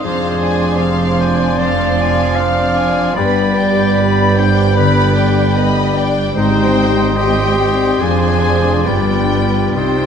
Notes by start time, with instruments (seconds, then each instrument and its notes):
Already playing: harp C4 G#4 C5, french horn section C4
0.03 double bass section F1, cello section F2, harp F2, bassoon F3, viola section C4 C5, french horn section D4, clarinet G#4, violin section C5 F5, oboe D5, flute C6
0.29 harp C4
0.42 viola section D4 D5, violin section G#5
0.54 harp G#4
0.77 harp C5, violin section F5
0.81 viola section C4 C5, violin section F5
1.05 harp D5
1.20 viola section D4 D5, clarinet C5, violin section D5 G#5
1.33 harp C5
1.58 harp F2, viola section C4 C5, violin section C5 F5, clarinet D5
1.87 harp C4
1.98 viola section D4 D5, violin section F5 G#5
2.13 harp G#4
2.35 viola section C4 C5, harp C5, violin section D5 F5, clarinet F5
2.63 harp D5
2.76 viola section D4 D5, violin section G#5
2.90 harp C5
3.16 double bass section G1, cello section G2, harp G2, bassoon G3, french horn section B3 D4, viola section B3 B4, violin section B4 B5, clarinet D5, oboe G5, flute B5
3.45 harp B3
3.57 viola section D4 D5, violin section G5
3.72 harp G4
3.96 viola section B3 B4, harp B4, violin section B4 B5
4.25 harp D5
4.38 viola section D4 D5, clarinet C5, violin section D5 G5
4.52 harp B4
4.77 harp D3, viola section B3 B4, clarinet B4, violin section B5
5.04 harp B3
5.15 viola section D4 D5, violin section G5
5.30 harp G4
5.55 viola section B3 B4, harp B4, violin section D#5 B5
5.83 harp D5
5.95 viola section D4 D5, violin section D5 G5
6.10 harp B4
6.36 double bass section G#1, cello section G#2, harp G#2, viola section C4 C5, french horn section C4 G4, clarinet D#4, violin section C5 G5, oboe D#5, flute C6
6.65 harp C4
6.91 harp G4
7.17 viola section C4 C5, clarinet G4, harp C5, violin section D#5 G5
7.21 french horn section C4 G4
7.47 harp G4
7.60 violin section D5
7.73 harp C5
8.00 double bass section F1, harp F2, cello section F2, bassoon F3, french horn section C4 D4, viola section D4 C5, clarinet G#4, violin section C5 G#5, oboe D5
8.28 harp C4
8.57 harp D4 G#4
8.86 double bass section G1, harp G2, cello section G2, bassoon G3, french horn section B3 D4, viola section D4 B4, clarinet F4, violin section B4 G5, flute B5
9.17 harp B3
9.33 violin section B4
9.46 harp D4 G4
9.75 double bass section C2, cello section C3, harp C3, french horn section C4 D#4, viola section C4 C5, clarinet F4, violin section C5 G5, oboe D#5, flute C6